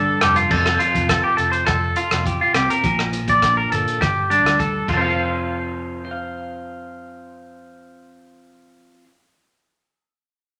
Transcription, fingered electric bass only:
0.00 0.19 G1 medium
0.22 0.48 F1 medium
0.51 0.76 F1 medium
0.95 1.20 F1 loud
1.39 1.63 F1 medium
1.67 1.92 F1 loud
2.12 2.36 F1 medium
2.54 2.67 C2 medium
2.84 3.22 A#1 medium
3.28 3.65 A#1 medium
3.72 3.85 G1 medium
4.01 4.45 G1 medium
4.45 4.82 D2 medium
4.88 8.97 F1 medium

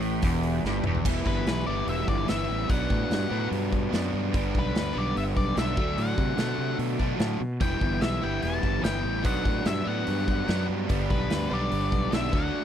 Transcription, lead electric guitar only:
1.27 1.64 B4 medium
1.67 1.86 D5 medium
1.89 2.09 E5 medium
2.09 2.29 D5 medium
2.29 2.71 E5 medium
2.70 3.48 F#5 medium
4.59 4.99 B4 medium
4.98 5.16 D5 medium
5.18 5.23 E5 medium
5.37 5.58 D5 medium
5.59 6.00 E5 medium
5.99 6.76 F#5 medium
7.61 8.04 G5 medium
8.02 8.23 E5 medium
8.23 8.42 G5 medium
8.43 8.81 A5 loud
8.84 9.25 G5 medium
9.25 9.68 F#5 medium
9.67 9.88 E5 medium
9.88 10.65 F#5 medium
11.10 11.52 B4 medium
11.54 12.14 D5 medium
12.14 12.34 E5 loud
12.35 12.64 F#5 medium

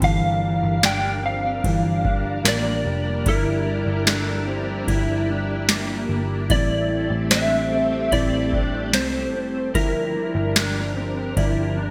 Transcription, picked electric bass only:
0.02 0.60 G1 loud
0.63 1.60 G1 loud
1.64 2.41 G1 loud
2.45 2.83 A1 loud
2.85 3.24 F1 medium
3.26 3.84 G1 loud
3.86 4.84 G1 medium
4.88 6.06 G1 loud
6.09 6.48 G1 medium
6.50 7.08 A1 loud
7.10 8.08 A1 loud
8.12 8.93 A1 loud
8.93 9.34 C2 loud
9.34 9.75 F1 medium
9.75 10.32 G1 loud
10.35 11.33 G1 loud
11.37 11.90 G1 loud

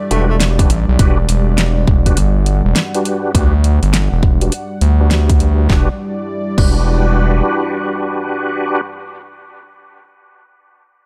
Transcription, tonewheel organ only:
0.11 0.30 D4 medium
0.11 0.30 F#4 medium
0.11 0.30 G4 medium
0.11 0.30 B4 medium
0.59 0.71 D4 medium
0.59 0.71 F#4 medium
0.59 0.71 G4 medium
0.59 0.71 B4 medium
0.99 1.19 D4 medium
0.99 1.19 F#4 medium
0.99 1.19 G4 medium
0.99 1.19 B4 loud
2.06 2.18 D4 medium
2.06 2.18 F#4 medium
2.06 2.18 G4 medium
2.06 2.18 B4 medium
2.94 3.32 D4 medium
2.94 3.32 F#4 medium
2.94 3.32 G4 medium
2.94 3.32 B4 medium
3.34 3.54 D4 medium
3.34 3.54 F#4 medium
3.34 3.54 G4 medium
3.34 3.54 B4 loud
4.42 4.53 D4 medium
4.42 4.53 F#4 medium
4.42 4.53 G4 medium
4.42 4.53 B4 medium
5.00 5.09 D4 medium
5.00 5.09 F#4 medium
5.00 5.09 G4 medium
5.00 5.09 B4 medium
5.11 5.67 D4 medium
5.11 5.67 F#4 medium
5.11 5.67 G4 medium
5.11 5.67 B4 loud
5.70 5.89 D4 medium
5.70 5.89 F#4 medium
5.70 5.89 G4 medium
5.70 5.89 B4 medium
6.58 8.81 D4 medium
6.58 8.81 F#4 medium
6.58 8.81 G4 medium
6.58 8.81 B4 medium

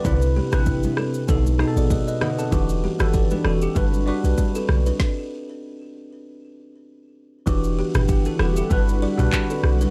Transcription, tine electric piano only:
0.00 0.37 C3 medium
0.00 0.20 D5 medium
0.05 0.38 C4 medium
0.05 0.38 E4 medium
0.05 0.39 B4 medium
0.52 1.28 C3 medium
0.52 1.28 C4 medium
0.52 0.59 D4 medium
0.52 1.29 B4 medium
0.60 1.32 E4 medium
1.28 1.53 B2 medium
1.28 1.54 B3 medium
1.28 1.54 D#4 medium
1.28 1.55 A4 medium
1.58 2.25 B2 medium
1.58 2.26 B3 medium
1.58 2.26 D#4 medium
1.58 1.67 G#4 medium
1.67 2.30 A4 medium
1.91 2.07 B4 medium
2.08 2.21 B4 medium
2.08 2.21 D#5 medium
2.22 2.38 D#5 medium
2.22 2.38 F#5 medium
2.39 2.68 F#5 medium
2.39 2.68 A5 medium
2.51 2.85 E3 medium
2.51 2.85 D4 medium
2.51 2.86 F#4 medium
2.51 2.86 G4 medium
2.99 3.75 E3 medium
2.99 3.75 D4 medium
2.99 3.14 F#4 medium
2.99 3.15 A4 medium
3.14 3.30 B4 medium
3.14 3.30 D5 medium
3.31 3.45 G4 medium
3.31 3.44 B4 medium
3.45 3.62 F#4 medium
3.45 3.61 A4 medium
3.62 3.92 E4 medium
3.62 3.92 G4 medium
3.75 4.01 G3 medium
3.75 4.01 D4 medium
3.75 4.02 F#4 medium
3.75 4.02 B4 medium
4.06 4.73 G3 medium
4.06 4.73 D4 medium
4.06 4.74 F#4 medium
4.06 4.74 B4 medium
7.46 8.13 E3 medium
7.46 8.13 D4 medium
7.46 8.09 F#4 medium
7.46 8.08 G4 loud
8.09 8.26 E4 medium
8.09 8.25 G4 medium
8.26 8.40 F#4 medium
8.26 8.39 A4 medium
8.40 8.56 G4 medium
8.40 8.56 B4 medium
8.57 8.87 E4 medium
8.57 8.86 G4 medium
8.70 9.08 G3 medium
8.70 9.08 D4 medium
8.70 9.09 F#4 medium
8.70 9.09 B4 loud
9.18 9.72 G3 medium
9.18 9.73 D4 medium
9.18 9.73 F#4 medium
9.18 9.74 B4 loud

